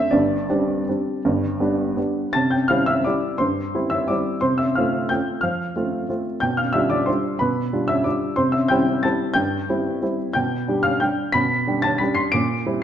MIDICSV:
0, 0, Header, 1, 2, 480
1, 0, Start_track
1, 0, Key_signature, 0, "major"
1, 0, Tempo, 371517
1, 140, Time_signature, 3, 2, 24, 8
1, 3022, Tempo, 349040
1, 5422, Tempo, 330215
1, 18138, End_track
2, 0, Start_track
2, 0, Title_t, "Upright piano"
2, 0, Program_c, 0, 0
2, 0, Note_on_c, 0, 76, 92
2, 139, Note_off_c, 0, 76, 0
2, 139, Note_on_c, 0, 74, 69
2, 160, Note_on_c, 0, 31, 58
2, 163, Note_on_c, 0, 43, 61
2, 445, Control_c, 0, 64, 127
2, 619, Note_off_c, 0, 31, 0
2, 621, Note_off_c, 0, 43, 0
2, 636, Note_on_c, 0, 55, 50
2, 640, Note_on_c, 0, 60, 52
2, 645, Note_on_c, 0, 62, 56
2, 1079, Note_off_c, 0, 55, 0
2, 1081, Note_off_c, 0, 60, 0
2, 1084, Note_off_c, 0, 62, 0
2, 1135, Control_c, 0, 64, 0
2, 1143, Note_on_c, 0, 55, 40
2, 1148, Note_on_c, 0, 60, 40
2, 1157, Note_on_c, 0, 62, 43
2, 1569, Note_off_c, 0, 55, 0
2, 1572, Note_off_c, 0, 60, 0
2, 1577, Note_off_c, 0, 62, 0
2, 1616, Note_on_c, 0, 43, 61
2, 1624, Note_on_c, 0, 31, 57
2, 1834, Control_c, 0, 64, 127
2, 2061, Note_off_c, 0, 43, 0
2, 2065, Note_off_c, 0, 31, 0
2, 2068, Note_on_c, 0, 55, 53
2, 2071, Note_on_c, 0, 59, 52
2, 2083, Note_on_c, 0, 62, 52
2, 2495, Note_off_c, 0, 55, 0
2, 2497, Note_off_c, 0, 59, 0
2, 2503, Note_off_c, 0, 62, 0
2, 2541, Note_on_c, 0, 55, 40
2, 2543, Note_off_c, 0, 74, 0
2, 2543, Note_on_c, 0, 59, 42
2, 2553, Note_on_c, 0, 62, 43
2, 2562, Control_c, 0, 64, 0
2, 2971, Note_off_c, 0, 55, 0
2, 2973, Note_off_c, 0, 59, 0
2, 2978, Note_off_c, 0, 62, 0
2, 3008, Note_on_c, 0, 93, 88
2, 3022, Note_on_c, 0, 81, 69
2, 3039, Note_on_c, 0, 48, 57
2, 3247, Note_off_c, 0, 81, 0
2, 3251, Note_on_c, 0, 91, 62
2, 3257, Note_off_c, 0, 93, 0
2, 3266, Note_on_c, 0, 79, 45
2, 3310, Control_c, 0, 64, 127
2, 3491, Note_on_c, 0, 89, 83
2, 3494, Note_off_c, 0, 79, 0
2, 3503, Note_off_c, 0, 91, 0
2, 3504, Note_off_c, 0, 48, 0
2, 3510, Note_on_c, 0, 77, 63
2, 3518, Note_on_c, 0, 55, 38
2, 3524, Note_on_c, 0, 60, 45
2, 3528, Note_on_c, 0, 64, 48
2, 3738, Note_off_c, 0, 77, 0
2, 3743, Note_on_c, 0, 88, 85
2, 3745, Note_off_c, 0, 89, 0
2, 3759, Note_on_c, 0, 76, 62
2, 3953, Note_off_c, 0, 55, 0
2, 3956, Note_off_c, 0, 60, 0
2, 3958, Note_off_c, 0, 64, 0
2, 3982, Note_off_c, 0, 76, 0
2, 3991, Note_off_c, 0, 88, 0
2, 3993, Note_on_c, 0, 86, 68
2, 4010, Note_on_c, 0, 74, 46
2, 4011, Control_c, 0, 64, 0
2, 4021, Note_on_c, 0, 55, 35
2, 4025, Note_on_c, 0, 60, 35
2, 4031, Note_on_c, 0, 64, 38
2, 4431, Note_off_c, 0, 55, 0
2, 4434, Note_off_c, 0, 60, 0
2, 4437, Note_off_c, 0, 64, 0
2, 4439, Note_off_c, 0, 74, 0
2, 4455, Note_on_c, 0, 84, 80
2, 4463, Note_off_c, 0, 86, 0
2, 4465, Note_on_c, 0, 72, 54
2, 4485, Note_on_c, 0, 43, 51
2, 4733, Control_c, 0, 64, 127
2, 4934, Note_off_c, 0, 43, 0
2, 4955, Note_on_c, 0, 60, 41
2, 4956, Note_on_c, 0, 55, 38
2, 4963, Note_on_c, 0, 64, 44
2, 5129, Note_off_c, 0, 72, 0
2, 5166, Note_on_c, 0, 88, 78
2, 5174, Note_off_c, 0, 84, 0
2, 5183, Note_on_c, 0, 76, 60
2, 5382, Note_off_c, 0, 60, 0
2, 5383, Note_off_c, 0, 55, 0
2, 5386, Note_off_c, 0, 64, 0
2, 5406, Note_off_c, 0, 76, 0
2, 5414, Note_off_c, 0, 88, 0
2, 5414, Note_on_c, 0, 86, 67
2, 5420, Note_on_c, 0, 74, 43
2, 5441, Control_c, 0, 64, 0
2, 5441, Note_on_c, 0, 55, 36
2, 5450, Note_on_c, 0, 64, 37
2, 5451, Note_on_c, 0, 60, 37
2, 5869, Note_off_c, 0, 55, 0
2, 5872, Note_off_c, 0, 74, 0
2, 5874, Note_off_c, 0, 60, 0
2, 5874, Note_off_c, 0, 64, 0
2, 5893, Note_on_c, 0, 84, 76
2, 5902, Note_off_c, 0, 86, 0
2, 5910, Note_on_c, 0, 72, 62
2, 5917, Note_on_c, 0, 48, 55
2, 6128, Note_off_c, 0, 72, 0
2, 6137, Note_off_c, 0, 84, 0
2, 6138, Note_on_c, 0, 88, 70
2, 6158, Note_on_c, 0, 76, 49
2, 6161, Control_c, 0, 64, 127
2, 6378, Note_off_c, 0, 76, 0
2, 6379, Note_off_c, 0, 48, 0
2, 6385, Note_off_c, 0, 88, 0
2, 6396, Note_on_c, 0, 89, 68
2, 6415, Note_on_c, 0, 77, 55
2, 6427, Note_on_c, 0, 57, 42
2, 6430, Note_on_c, 0, 60, 39
2, 6436, Note_on_c, 0, 65, 46
2, 6857, Note_off_c, 0, 57, 0
2, 6858, Note_off_c, 0, 60, 0
2, 6862, Note_off_c, 0, 65, 0
2, 6864, Note_off_c, 0, 77, 0
2, 6885, Note_on_c, 0, 91, 73
2, 6889, Note_off_c, 0, 89, 0
2, 6905, Note_on_c, 0, 79, 47
2, 6906, Control_c, 0, 64, 0
2, 6914, Note_on_c, 0, 57, 32
2, 6916, Note_on_c, 0, 60, 35
2, 6927, Note_on_c, 0, 65, 40
2, 7333, Note_off_c, 0, 57, 0
2, 7334, Note_off_c, 0, 60, 0
2, 7340, Note_off_c, 0, 65, 0
2, 7342, Note_off_c, 0, 79, 0
2, 7349, Note_on_c, 0, 89, 71
2, 7365, Note_off_c, 0, 91, 0
2, 7377, Note_on_c, 0, 77, 54
2, 7382, Note_on_c, 0, 53, 50
2, 7629, Control_c, 0, 64, 127
2, 7832, Note_off_c, 0, 53, 0
2, 7854, Note_on_c, 0, 57, 38
2, 7864, Note_on_c, 0, 60, 37
2, 7869, Note_on_c, 0, 65, 43
2, 8290, Note_off_c, 0, 57, 0
2, 8296, Note_off_c, 0, 60, 0
2, 8299, Note_off_c, 0, 65, 0
2, 8339, Note_on_c, 0, 57, 34
2, 8341, Control_c, 0, 64, 0
2, 8350, Note_on_c, 0, 60, 38
2, 8352, Note_on_c, 0, 65, 37
2, 8525, Note_off_c, 0, 77, 0
2, 8569, Note_off_c, 0, 89, 0
2, 8768, Note_off_c, 0, 57, 0
2, 8774, Note_off_c, 0, 60, 0
2, 8775, Note_off_c, 0, 65, 0
2, 8793, Note_on_c, 0, 91, 78
2, 8810, Note_on_c, 0, 79, 61
2, 8820, Note_on_c, 0, 47, 55
2, 9027, Note_off_c, 0, 79, 0
2, 9035, Note_off_c, 0, 91, 0
2, 9040, Note_on_c, 0, 89, 71
2, 9048, Note_on_c, 0, 77, 46
2, 9089, Control_c, 0, 64, 127
2, 9262, Note_on_c, 0, 88, 81
2, 9270, Note_off_c, 0, 77, 0
2, 9275, Note_off_c, 0, 47, 0
2, 9281, Note_on_c, 0, 76, 64
2, 9282, Note_off_c, 0, 89, 0
2, 9290, Note_on_c, 0, 55, 40
2, 9298, Note_on_c, 0, 62, 44
2, 9307, Note_on_c, 0, 65, 43
2, 9508, Note_off_c, 0, 76, 0
2, 9510, Note_on_c, 0, 86, 76
2, 9516, Note_off_c, 0, 88, 0
2, 9529, Note_on_c, 0, 74, 65
2, 9723, Note_off_c, 0, 55, 0
2, 9728, Note_off_c, 0, 62, 0
2, 9732, Note_off_c, 0, 65, 0
2, 9747, Note_on_c, 0, 84, 63
2, 9753, Note_off_c, 0, 74, 0
2, 9760, Note_off_c, 0, 86, 0
2, 9761, Note_on_c, 0, 72, 44
2, 9774, Note_on_c, 0, 55, 34
2, 9779, Note_on_c, 0, 62, 36
2, 9788, Control_c, 0, 64, 0
2, 9788, Note_on_c, 0, 65, 37
2, 10195, Note_off_c, 0, 55, 0
2, 10199, Note_off_c, 0, 62, 0
2, 10203, Note_off_c, 0, 72, 0
2, 10204, Note_off_c, 0, 65, 0
2, 10229, Note_off_c, 0, 84, 0
2, 10229, Note_on_c, 0, 83, 74
2, 10250, Note_on_c, 0, 71, 56
2, 10259, Note_on_c, 0, 47, 54
2, 10521, Control_c, 0, 64, 127
2, 10706, Note_off_c, 0, 47, 0
2, 10722, Note_on_c, 0, 55, 42
2, 10724, Note_on_c, 0, 65, 45
2, 10725, Note_on_c, 0, 62, 43
2, 10905, Note_off_c, 0, 71, 0
2, 10934, Note_on_c, 0, 88, 82
2, 10944, Note_off_c, 0, 83, 0
2, 10955, Note_on_c, 0, 76, 65
2, 11147, Note_off_c, 0, 55, 0
2, 11148, Note_off_c, 0, 65, 0
2, 11149, Note_off_c, 0, 62, 0
2, 11175, Note_off_c, 0, 76, 0
2, 11175, Note_on_c, 0, 86, 61
2, 11181, Note_off_c, 0, 88, 0
2, 11187, Note_on_c, 0, 74, 38
2, 11200, Note_on_c, 0, 55, 33
2, 11201, Note_on_c, 0, 62, 37
2, 11209, Control_c, 0, 64, 0
2, 11212, Note_on_c, 0, 65, 37
2, 11618, Note_off_c, 0, 55, 0
2, 11619, Note_off_c, 0, 62, 0
2, 11625, Note_off_c, 0, 65, 0
2, 11625, Note_off_c, 0, 74, 0
2, 11639, Note_on_c, 0, 84, 79
2, 11651, Note_on_c, 0, 72, 67
2, 11652, Note_off_c, 0, 86, 0
2, 11664, Note_on_c, 0, 48, 56
2, 11870, Note_off_c, 0, 72, 0
2, 11871, Note_on_c, 0, 88, 70
2, 11881, Note_off_c, 0, 84, 0
2, 11892, Note_on_c, 0, 76, 50
2, 11904, Control_c, 0, 64, 127
2, 12109, Note_on_c, 0, 91, 83
2, 12111, Note_off_c, 0, 76, 0
2, 12116, Note_off_c, 0, 48, 0
2, 12118, Note_off_c, 0, 88, 0
2, 12130, Note_on_c, 0, 79, 70
2, 12145, Note_on_c, 0, 55, 42
2, 12153, Note_on_c, 0, 60, 46
2, 12154, Note_on_c, 0, 64, 46
2, 12575, Note_off_c, 0, 55, 0
2, 12579, Note_off_c, 0, 60, 0
2, 12580, Note_off_c, 0, 64, 0
2, 12581, Note_off_c, 0, 79, 0
2, 12604, Note_off_c, 0, 91, 0
2, 12608, Note_on_c, 0, 93, 76
2, 12620, Note_on_c, 0, 81, 59
2, 12633, Control_c, 0, 64, 0
2, 12633, Note_on_c, 0, 55, 37
2, 12641, Note_on_c, 0, 60, 36
2, 12648, Note_on_c, 0, 64, 42
2, 13047, Note_off_c, 0, 55, 0
2, 13051, Note_off_c, 0, 60, 0
2, 13054, Note_off_c, 0, 81, 0
2, 13055, Note_off_c, 0, 64, 0
2, 13055, Note_on_c, 0, 91, 88
2, 13070, Note_on_c, 0, 79, 63
2, 13081, Note_off_c, 0, 93, 0
2, 13083, Note_on_c, 0, 43, 55
2, 13364, Control_c, 0, 64, 127
2, 13538, Note_off_c, 0, 43, 0
2, 13574, Note_on_c, 0, 55, 46
2, 13582, Note_on_c, 0, 60, 45
2, 13586, Note_on_c, 0, 64, 46
2, 14006, Note_off_c, 0, 55, 0
2, 14010, Note_off_c, 0, 60, 0
2, 14012, Note_off_c, 0, 64, 0
2, 14048, Note_on_c, 0, 55, 33
2, 14056, Note_on_c, 0, 60, 40
2, 14061, Control_c, 0, 64, 0
2, 14061, Note_on_c, 0, 64, 37
2, 14220, Note_off_c, 0, 79, 0
2, 14271, Note_off_c, 0, 91, 0
2, 14477, Note_off_c, 0, 55, 0
2, 14482, Note_off_c, 0, 60, 0
2, 14485, Note_off_c, 0, 64, 0
2, 14507, Note_on_c, 0, 91, 76
2, 14529, Note_on_c, 0, 79, 62
2, 14540, Note_on_c, 0, 47, 57
2, 14801, Control_c, 0, 64, 127
2, 14991, Note_off_c, 0, 47, 0
2, 15012, Note_on_c, 0, 62, 45
2, 15015, Note_on_c, 0, 55, 46
2, 15025, Note_on_c, 0, 67, 50
2, 15192, Note_off_c, 0, 79, 0
2, 15224, Note_on_c, 0, 89, 81
2, 15232, Note_off_c, 0, 91, 0
2, 15236, Note_on_c, 0, 77, 61
2, 15444, Note_off_c, 0, 62, 0
2, 15445, Note_off_c, 0, 55, 0
2, 15451, Note_off_c, 0, 67, 0
2, 15465, Note_off_c, 0, 77, 0
2, 15475, Note_on_c, 0, 91, 66
2, 15476, Note_off_c, 0, 89, 0
2, 15489, Note_on_c, 0, 79, 56
2, 15502, Note_on_c, 0, 55, 40
2, 15506, Control_c, 0, 64, 0
2, 15513, Note_on_c, 0, 62, 38
2, 15518, Note_on_c, 0, 67, 45
2, 15923, Note_off_c, 0, 55, 0
2, 15929, Note_off_c, 0, 62, 0
2, 15930, Note_off_c, 0, 79, 0
2, 15932, Note_off_c, 0, 67, 0
2, 15947, Note_on_c, 0, 95, 93
2, 15956, Note_off_c, 0, 91, 0
2, 15963, Note_on_c, 0, 83, 70
2, 15978, Note_on_c, 0, 47, 58
2, 16201, Control_c, 0, 64, 127
2, 16434, Note_off_c, 0, 47, 0
2, 16455, Note_on_c, 0, 62, 46
2, 16456, Note_on_c, 0, 55, 45
2, 16464, Note_on_c, 0, 67, 49
2, 16636, Note_off_c, 0, 83, 0
2, 16670, Note_on_c, 0, 93, 91
2, 16679, Note_off_c, 0, 95, 0
2, 16688, Note_on_c, 0, 81, 72
2, 16891, Note_off_c, 0, 62, 0
2, 16892, Note_off_c, 0, 55, 0
2, 16897, Note_off_c, 0, 67, 0
2, 16904, Note_on_c, 0, 95, 67
2, 16916, Note_off_c, 0, 81, 0
2, 16920, Note_on_c, 0, 83, 54
2, 16925, Note_off_c, 0, 93, 0
2, 16937, Note_on_c, 0, 55, 37
2, 16940, Note_on_c, 0, 62, 37
2, 16950, Control_c, 0, 64, 0
2, 16950, Note_on_c, 0, 67, 44
2, 17140, Note_on_c, 0, 96, 84
2, 17152, Note_on_c, 0, 84, 72
2, 17153, Note_off_c, 0, 83, 0
2, 17163, Note_off_c, 0, 95, 0
2, 17366, Note_off_c, 0, 55, 0
2, 17368, Note_off_c, 0, 62, 0
2, 17374, Note_off_c, 0, 67, 0
2, 17382, Note_off_c, 0, 84, 0
2, 17389, Note_on_c, 0, 98, 94
2, 17394, Note_off_c, 0, 96, 0
2, 17405, Note_on_c, 0, 86, 67
2, 17420, Note_on_c, 0, 46, 57
2, 17715, Control_c, 0, 64, 127
2, 17878, Note_off_c, 0, 46, 0
2, 17892, Note_on_c, 0, 55, 44
2, 17894, Note_on_c, 0, 60, 42
2, 17895, Note_on_c, 0, 64, 45
2, 18083, Note_off_c, 0, 86, 0
2, 18126, Note_off_c, 0, 98, 0
2, 18138, Note_off_c, 0, 55, 0
2, 18138, Note_off_c, 0, 60, 0
2, 18138, Note_off_c, 0, 64, 0
2, 18138, End_track
0, 0, End_of_file